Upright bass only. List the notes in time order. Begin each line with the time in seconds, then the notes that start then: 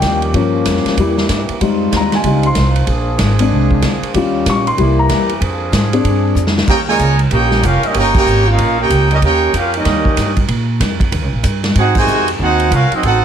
0.01 D#2
0.33 G2
0.65 F2
0.85 muted upright bass stroke
0.97 E2
1.29 G2
1.49 muted upright bass stroke
1.60 F2
1.92 D#2
2.23 C#2
2.55 C2
2.87 A#1
3.19 G#1
3.51 C2
3.82 D2
4.02 muted upright bass stroke
4.14 D#2
4.46 A#1
4.77 C2
5.09 E2
5.41 F2
5.72 G#2
6.04 G2
6.35 F2
6.67 D#2
6.99 C#2
7.31 A#1
7.62 F1
7.83 muted upright bass stroke
7.94 G1
8.26 G#1
8.58 A#1
8.90 C#2
9.22 D#2
9.53 F2
9.85 D#2
10.17 G2
10.48 A#2
10.80 F2
11.12 D#2
11.22 C#2
11.33 A#1
11.43 G2
11.75 G#2
12.07 F2
12.39 D#2
12.71 C2
12.90 muted upright bass stroke
13.02 A1